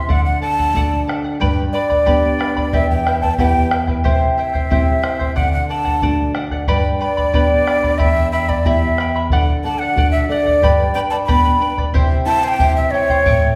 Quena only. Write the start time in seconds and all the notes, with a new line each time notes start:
Already playing: E5
0.11 F#5
0.25 F#5
0.42 A5
1.73 D5
2.74 E5
2.90 G5
3.22 A5
3.38 G5
4.38 E5
5.36 F#5
5.53 F#5
5.69 A5
7.00 D5
7.98 E5
8.32 E5
8.49 D5
8.67 E5
9.65 A5
9.80 F#5
10.11 E5
10.29 D5
10.94 G5
11.10 A5
11.26 B5
12.27 A5
12.43 A5
12.48 G5
12.77 E5
12.91 C#5